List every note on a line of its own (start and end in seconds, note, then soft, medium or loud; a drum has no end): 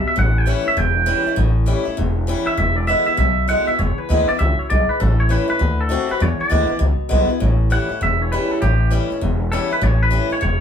0.00 0.15 B2 medium
0.06 0.18 E5 loud
0.06 muted upright bass stroke medium
0.16 0.52 A1 loud
0.16 0.74 A2 medium
0.16 0.38 F#5 loud
0.38 0.48 G5 loud
0.46 0.65 E3 medium
0.46 0.65 G3 medium
0.46 0.65 C#4 loud
0.46 0.63 E4 loud
0.46 0.67 F#5 loud
0.65 0.77 C#4 soft
0.65 0.76 E4 medium
0.65 0.77 E5 loud
0.65 muted upright bass stroke medium
0.77 1.11 E1 medium
0.77 1.35 E2 loud
0.77 1.38 G5 loud
1.06 1.25 E3 loud
1.06 1.25 G3 medium
1.06 1.25 C#4 medium
1.06 1.25 E4 medium
1.26 1.38 C#4 medium
1.26 1.37 E4 medium
1.26 muted upright bass stroke medium
1.36 1.72 A1 medium
1.36 1.95 A2 loud
1.66 1.85 E3 medium
1.66 1.85 G3 medium
1.66 1.86 C#4 medium
1.66 1.84 E4 loud
1.85 1.98 C#4 soft
1.85 1.96 E4 medium
1.85 muted upright bass stroke medium
1.97 2.33 E1 medium
1.97 2.56 E2 medium
2.27 2.46 E3 medium
2.27 2.46 G3 medium
2.27 2.47 C#4 medium
2.27 2.46 E4 loud
2.47 2.58 C#4 medium
2.47 2.58 E4 medium
2.47 2.57 E5 loud
2.47 muted upright bass stroke medium
2.57 2.92 E1 loud
2.57 3.16 E2 medium
2.57 2.76 E5 loud
2.76 2.87 D5 loud
2.87 3.06 D3 medium
2.87 3.07 G#3 medium
2.87 3.06 B3 medium
2.87 3.04 E4 medium
2.87 3.05 E5 loud
3.05 3.18 B3 medium
3.05 3.17 E4 medium
3.05 3.17 E5 loud
3.05 muted upright bass stroke medium
3.17 3.53 B1 medium
3.17 3.76 B2 loud
3.17 3.48 E5 loud
3.48 3.67 D3 medium
3.48 3.67 G#3 medium
3.48 3.67 B3 loud
3.48 3.67 E4 loud
3.48 3.67 F#5 loud
3.67 3.79 B3 soft
3.67 3.78 E4 medium
3.67 3.79 E5 loud
3.67 muted upright bass stroke medium
3.79 3.92 E1 loud
3.79 4.37 E2 medium
3.79 3.98 C#5 loud
3.98 4.28 B4 medium
3.98 muted upright bass stroke medium
4.09 4.26 D2 medium
4.09 4.27 D3 medium
4.09 4.28 G#3 medium
4.09 4.28 B3 medium
4.09 4.27 E4 loud
4.29 4.40 B3 soft
4.29 4.39 E4 medium
4.29 4.38 D5 loud
4.29 muted upright bass stroke medium
4.39 4.56 C#2 loud
4.39 4.68 F#2 loud
4.39 4.59 E5 loud
4.59 4.69 C#5 loud
4.59 muted upright bass stroke medium
4.70 4.87 B1 medium
4.70 4.99 G#2 loud
4.70 4.89 D5 loud
4.89 5.00 B4 loud
4.89 muted upright bass stroke medium
5.00 5.35 A1 loud
5.00 5.58 A2 medium
5.00 5.19 A4 loud
5.20 5.31 C#5 medium
5.29 5.48 E3 medium
5.29 5.48 G3 medium
5.29 5.48 C#4 medium
5.29 5.46 E4 medium
5.29 5.49 B4 loud
5.48 5.60 C#4 medium
5.48 5.59 E4 medium
5.48 5.80 B4 loud
5.48 muted upright bass stroke medium
5.59 5.95 D2 medium
5.59 5.88 D3 medium
5.81 6.11 A4 medium
5.89 6.08 D3 medium
5.89 6.08 A3 medium
5.89 6.09 C4 loud
5.89 6.08 F#4 loud
6.09 6.20 C4 medium
6.09 6.20 F#4 medium
6.09 6.22 B4 loud
6.09 muted upright bass stroke medium
6.20 6.78 E2 medium
6.20 6.34 E2 loud
6.20 6.41 C#5 loud
6.40 6.79 D5 medium
6.40 muted upright bass stroke medium
6.50 6.67 D2 medium
6.50 6.68 D3 medium
6.50 6.69 G#3 medium
6.50 6.68 B3 medium
6.50 6.66 E4 loud
6.67 6.80 B3 soft
6.67 6.79 E4 medium
6.67 muted upright bass stroke medium
6.79 6.97 C#2 medium
6.79 7.38 B2 medium
7.00 muted upright bass stroke medium
7.09 7.27 B1 medium
7.09 7.28 D3 loud
7.09 7.28 G#3 loud
7.09 7.29 B3 loud
7.09 7.27 E4 loud
7.28 7.41 B3 medium
7.28 7.40 E4 medium
7.28 muted upright bass stroke medium
7.40 7.76 A1 loud
7.40 7.99 A2 medium
7.70 7.89 E3 medium
7.70 7.89 G3 medium
7.70 7.89 C#4 medium
7.70 7.88 E4 medium
7.70 8.01 F#5 medium
7.89 8.02 C#4 soft
7.89 8.00 E4 medium
7.89 muted upright bass stroke medium
8.01 8.36 E1 medium
8.01 8.59 E2 medium
8.01 8.22 E5 loud
8.22 8.32 C#5 medium
8.32 8.61 E3 medium
8.32 8.61 G3 loud
8.32 8.62 C#4 loud
8.32 8.62 E4 medium
8.32 8.52 B4 medium
8.51 8.61 A4 medium
8.51 muted upright bass stroke medium
8.62 8.97 A1 loud
8.62 9.20 A2 medium
8.62 8.91 G4 loud
8.91 9.10 E3 medium
8.91 9.10 G3 loud
8.91 9.11 C#4 medium
8.91 9.09 E4 medium
9.10 9.22 C#4 medium
9.10 9.21 E4 medium
9.10 muted upright bass stroke medium
9.21 9.56 E1 medium
9.21 9.80 E2 medium
9.52 9.70 E3 medium
9.52 9.71 G3 loud
9.52 9.71 C#4 loud
9.52 9.70 E4 medium
9.52 9.70 A4 medium
9.71 9.83 C#4 medium
9.71 9.82 E4 medium
9.71 9.83 B4 medium
9.71 muted upright bass stroke medium
9.81 10.17 A1 loud
9.81 10.40 A2 loud
9.81 10.01 C#5 medium
10.03 10.31 B4 loud
10.11 10.30 E3 medium
10.11 10.30 G3 medium
10.11 10.30 C#4 medium
10.11 10.29 E4 loud
10.30 10.42 C#4 medium
10.30 10.41 E4 medium
10.30 10.41 C#5 loud
10.30 muted upright bass stroke medium
10.41 10.60 E1 loud
10.41 10.60 E2 medium
10.41 10.60 C#5 loud